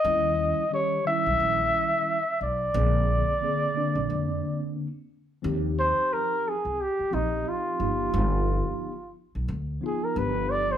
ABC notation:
X:1
M:4/4
L:1/16
Q:"Swing 16ths" 1/4=89
K:Eb
V:1 name="Muted trumpet"
e4 _d2 _f8 =d2- | d12 z4 | z2 c2 B2 A2 G2 E2 F4- | F6 z4 A B =B2 d c |]
V:2 name="Tine electric piano"
[E,G,_D_F]4 [E,G,DG]2 [E,G,DF]6 z4 | [D,B,CA]4 [D,B,CA]2 [D,B,CD]6 z4 | [F,CEG]6 z4 [F,CEG]4 [F,=B,EG]2- | [F,=B,EG]4 z6 [F,B,EF]2 [F,B,DG]4 |]
V:3 name="Upright bass" clef=bass
E,,3 z4 _C,, B,,,2 z4 C,,2 | B,,,3 z4 B,,, F,,2 z6 | E,,3 z4 C,, z2 B,,,2 z2 G,,,2 | G,,,3 z4 =B,,, D,,2 z2 G,,,4 |]